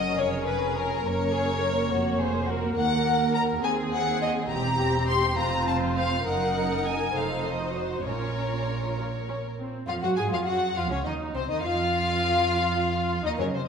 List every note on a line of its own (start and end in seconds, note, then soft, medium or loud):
0.00 0.16 F#1 soft
0.00 0.16 F#2 soft
0.00 0.16 C#4 soft
0.00 0.18 F#4 soft
0.00 1.01 A#4 soft
0.00 0.17 D#5 medium
0.17 1.04 F1 medium
0.17 1.04 F2 medium
0.17 1.02 C#4 soft
0.17 1.02 G#4 medium
0.17 0.46 C#5 medium
0.46 0.75 B4 medium
0.76 1.04 A#4 medium
1.03 1.89 F#1 medium
1.03 1.89 F#2 soft
1.03 3.64 A#3 medium
1.03 1.32 A#4 medium
1.03 1.89 A#4 soft
1.03 2.49 C#5 medium
1.33 1.62 G#4 medium
1.61 1.90 A#4 medium
1.89 2.77 F1 medium
1.89 2.77 F2 soft
1.89 2.18 F#4 medium
1.89 2.19 C#5 soft
2.19 2.48 G#4 medium
2.19 2.48 C5 medium
2.48 2.77 F#4 medium
2.48 2.75 A#4 medium
2.76 3.62 D#2 medium
2.76 3.62 A#4 medium
2.76 3.62 A#4 soft
2.76 3.31 F#5 medium
3.34 3.42 A#5 medium
3.63 4.49 D#2 medium
3.63 4.49 D#2 soft
3.63 4.49 C4 soft
3.63 4.49 G#4 soft
3.63 4.51 G#4 medium
3.63 3.72 G#5 medium
3.93 4.21 F#5 medium
4.22 4.30 D#5 medium
4.50 5.38 E1 medium
4.50 5.38 E2 medium
4.50 5.37 C4 soft
4.50 5.36 G4 medium
4.50 5.37 G4 soft
4.50 5.08 A#5 medium
5.09 5.38 C6 medium
5.38 6.26 F1 medium
5.38 6.26 F2 medium
5.38 6.25 C4 soft
5.38 6.26 F4 medium
5.38 6.26 C5 soft
5.38 5.67 A#5 medium
5.68 5.76 A5 medium
5.97 6.26 F5 medium
6.26 7.12 F#1 medium
6.26 7.12 F#2 soft
6.26 7.12 D#4 soft
6.26 7.14 A#4 medium
6.26 7.12 A#4 soft
6.26 6.85 F#5 medium
6.85 7.16 G#5 medium
7.15 8.04 F1 soft
7.15 8.05 F2 soft
7.15 8.05 D#4 soft
7.15 7.61 A4 soft
7.15 8.04 C5 soft
7.15 7.46 F5 medium
7.46 7.76 D#5 medium
7.61 8.06 F#4 soft
7.77 8.07 C5 soft
8.06 9.67 A#1 soft
8.06 9.67 A#2 soft
8.06 8.91 C#4 soft
8.06 8.89 F4 soft
8.06 9.55 A#4 medium
8.06 9.40 C#5 soft
8.97 9.05 F4 soft
9.28 9.36 C#4 soft
9.58 9.87 C4 soft
9.87 10.01 F2 medium
9.87 10.02 F3 soft
9.87 9.93 F4 medium
9.87 10.02 F4 soft
9.87 9.94 F5 medium
10.02 10.09 F#2 soft
10.02 10.08 F#3 soft
10.02 10.08 F#4 soft
10.02 10.17 F#4 medium
10.02 10.10 F#5 medium
10.17 10.32 G#2 medium
10.17 10.32 G#3 soft
10.17 10.31 G#4 medium
10.17 10.32 G#4 soft
10.17 10.23 G#5 medium
10.31 10.46 F2 soft
10.31 10.47 F3 soft
10.31 10.46 F4 soft
10.31 10.47 F4 soft
10.31 10.39 F5 medium
10.46 10.75 F#2 soft
10.46 10.76 F#3 soft
10.46 10.76 F#4 medium
10.46 10.76 F#4 soft
10.46 10.75 F#5 medium
10.76 10.90 F2 medium
10.76 10.91 F3 soft
10.76 10.82 F4 medium
10.76 10.91 F4 soft
10.76 10.91 F5 medium
10.91 11.05 C#2 medium
10.91 10.97 C#3 soft
10.91 11.06 C#4 soft
10.91 10.97 C#4 soft
10.91 11.06 C#5 medium
11.05 11.35 D#2 soft
11.05 11.14 D#3 soft
11.05 11.14 D#4 soft
11.05 11.35 D#4 medium
11.05 11.14 D#5 soft
11.34 11.49 C2 soft
11.34 11.49 C3 soft
11.34 11.49 C4 soft
11.34 11.41 C4 medium
11.34 11.49 C5 medium
11.49 11.63 D#2 soft
11.49 11.63 D#3 soft
11.49 11.64 D#4 soft
11.49 11.64 D#5 medium
11.63 13.21 F2 medium
11.63 13.24 F3 medium
11.63 13.24 F4 medium
11.63 13.21 F5 medium
13.24 13.38 D#2 medium
13.24 13.38 D#3 soft
13.24 13.38 D#4 soft
13.24 13.31 D#5 medium
13.39 13.47 F#2 soft
13.39 13.53 C#3 medium
13.39 13.47 F#3 soft
13.39 13.47 C#4 soft
13.39 13.47 A#4 soft
13.39 13.45 C#5 medium
13.53 13.67 C3 soft
13.53 13.68 C5 soft